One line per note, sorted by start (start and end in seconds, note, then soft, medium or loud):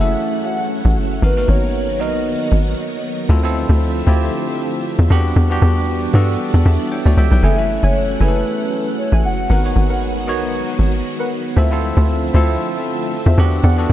0.00 0.16 F#1 loud
0.00 1.19 E3 medium
0.00 3.25 F#3 medium
0.00 1.20 A3 medium
0.00 1.24 A3 medium
0.00 1.20 C#4 medium
0.00 1.24 C#4 medium
0.00 1.24 E4 medium
0.00 1.24 G#4 medium
0.00 1.24 A4 medium
0.00 0.47 E5 loud
0.00 1.19 F#5 medium
0.46 0.97 F#5 loud
0.85 0.98 A1 loud
0.97 1.20 F#1 medium
1.22 1.45 G#1 loud
1.22 3.27 D#3 medium
1.22 1.34 B3 medium
1.22 3.27 B3 medium
1.22 1.34 D#4 medium
1.22 3.27 F#4 medium
1.22 1.34 F#4 medium
1.22 3.27 A#4 medium
1.22 1.35 A#4 medium
1.22 1.50 B4 loud
1.36 1.42 A#3 medium
1.36 1.89 D#4 medium
1.36 1.89 F#4 medium
1.36 1.89 A#4 medium
1.42 1.91 B3 medium
1.48 2.01 G#1 loud
1.48 2.02 C#5 loud
2.00 2.36 B1 medium
2.00 2.83 B3 medium
2.00 2.83 D#4 medium
2.00 2.84 F#4 medium
2.00 2.84 A#4 medium
2.00 3.04 D#5 loud
2.52 2.75 G#1 medium
3.29 3.65 D2 loud
3.29 5.09 D3 medium
3.29 5.09 F3 medium
3.29 5.09 A3 medium
3.29 3.41 C4 medium
3.29 5.09 C4 medium
3.29 3.41 E4 medium
3.29 3.41 F4 medium
3.29 3.42 A4 loud
3.29 5.09 E5 medium
3.43 3.95 C4 medium
3.43 3.95 E4 medium
3.43 3.96 F4 medium
3.43 3.96 A4 loud
3.69 4.03 D2 loud
4.07 4.30 D2 medium
4.07 4.90 C4 medium
4.07 4.90 E4 medium
4.07 4.91 F4 medium
4.07 4.91 G4 loud
4.99 5.09 E2 loud
5.10 5.33 E2 loud
5.10 9.46 E3 medium
5.10 7.41 G3 medium
5.10 5.42 B3 loud
5.10 7.41 B3 medium
5.10 7.41 D4 medium
5.10 5.42 D4 medium
5.10 5.42 F#4 medium
5.10 5.43 G4 loud
5.10 9.46 F#5 medium
5.36 5.59 E2 loud
5.50 6.02 B3 medium
5.50 6.02 D4 medium
5.50 6.03 F#4 medium
5.50 6.03 G4 loud
5.62 6.08 E2 loud
6.13 6.37 G2 medium
6.13 6.97 B3 medium
6.13 6.97 D4 medium
6.13 6.92 F#4 medium
6.13 6.92 A4 loud
6.54 6.64 E2 medium
6.66 6.78 E2 loud
6.66 6.90 E5 medium
6.92 7.05 E4 medium
6.92 7.05 C#5 medium
6.92 7.16 G5 medium
7.06 7.16 D2 medium
7.06 7.17 F#4 medium
7.06 7.17 D5 medium
7.17 7.30 C#2 medium
7.17 7.31 G4 medium
7.17 7.31 E5 medium
7.17 7.31 G5 medium
7.31 7.42 B1 loud
7.31 7.57 B4 medium
7.31 7.56 G5 medium
7.43 7.79 F#1 loud
7.43 11.53 F#3 medium
7.43 7.54 A3 medium
7.43 9.48 A3 medium
7.43 9.48 C#4 medium
7.43 7.55 C#4 medium
7.43 7.55 E4 medium
7.43 7.55 G#4 medium
7.43 7.80 A4 loud
7.43 7.80 E5 medium
7.43 7.85 E5 loud
7.43 7.80 G#5 loud
7.57 8.09 A3 medium
7.57 8.09 C#4 medium
7.57 8.10 E4 medium
7.57 8.10 A4 medium
7.83 8.16 F#1 medium
7.83 8.18 A4 medium
7.83 8.21 C#5 loud
7.83 8.18 E5 medium
7.83 8.18 G#5 medium
8.20 8.44 F#1 loud
8.20 9.04 A3 medium
8.20 9.04 C#4 medium
8.20 9.04 E4 medium
8.20 8.28 G#4 medium
8.20 8.44 A4 medium
8.20 8.95 B4 loud
8.20 8.45 E5 medium
8.20 8.45 G#5 medium
8.28 9.08 A4 medium
8.99 9.10 C#5 loud
9.12 9.26 A1 loud
9.12 9.22 A4 medium
9.12 9.22 E5 medium
9.12 9.22 G#5 medium
9.24 9.47 F#1 loud
9.24 9.73 F#5 loud
9.50 9.73 G#1 loud
9.50 11.55 D#3 medium
9.50 11.55 G#3 medium
9.50 11.55 B3 medium
9.50 9.61 B3 medium
9.50 9.62 D#4 medium
9.50 11.55 F#4 medium
9.50 9.62 F#4 medium
9.50 9.87 A#4 loud
9.50 9.62 A#4 medium
9.50 9.87 B4 medium
9.50 9.87 F#5 loud
9.64 10.16 B3 medium
9.64 10.16 D#4 medium
9.64 10.17 F#4 medium
9.64 10.17 C#5 medium
9.76 10.29 G#1 loud
9.90 10.25 A#4 medium
9.90 10.25 B4 medium
9.90 10.25 F#5 medium
10.27 10.63 B1 loud
10.27 11.11 B3 medium
10.27 11.11 D#4 medium
10.27 11.11 F#4 medium
10.27 10.51 A#4 medium
10.27 10.52 B4 medium
10.27 11.12 C#5 loud
10.27 10.52 F#5 medium
10.79 11.02 G#1 medium
11.19 11.29 A#4 medium
11.19 11.29 B4 medium
11.19 11.29 F#5 medium
11.56 11.92 D2 loud
11.56 13.36 D3 medium
11.56 13.36 F3 medium
11.56 13.36 A3 medium
11.56 11.68 C4 loud
11.56 13.36 C4 medium
11.56 11.68 E4 medium
11.56 11.93 F4 loud
11.56 11.69 F4 medium
11.56 11.69 A4 loud
11.56 11.93 C5 medium
11.56 13.36 E5 medium
11.56 11.94 E5 loud
11.71 12.23 C4 medium
11.71 12.23 E4 medium
11.71 12.23 F4 medium
11.71 12.24 A4 loud
11.96 12.30 D2 loud
11.96 12.31 F4 medium
11.96 12.32 C5 medium
11.96 12.32 E5 medium
12.34 12.57 D2 loud
12.34 13.18 C4 medium
12.34 13.18 E4 medium
12.34 12.58 F4 medium
12.34 13.18 F4 medium
12.34 13.19 A4 loud
12.34 12.58 C5 medium
12.34 12.59 E5 medium
13.26 13.37 E2 loud
13.26 13.36 F4 medium
13.26 13.36 C5 medium
13.26 13.36 E5 medium
13.38 13.61 E2 loud
13.38 13.93 D3 medium
13.38 13.93 E3 medium
13.38 13.69 B3 loud
13.38 13.93 B3 medium
13.38 13.93 D4 medium
13.38 13.70 D4 medium
13.38 13.70 F#4 loud
13.38 13.70 G4 loud
13.38 13.93 F#5 medium
13.63 13.87 E2 loud
13.63 13.93 G4 loud
13.63 13.93 D5 medium
13.63 13.93 F#5 loud
13.78 13.93 B3 medium
13.78 13.93 D4 medium
13.78 13.93 F#4 medium
13.78 13.93 A4 loud
13.90 13.93 E2 loud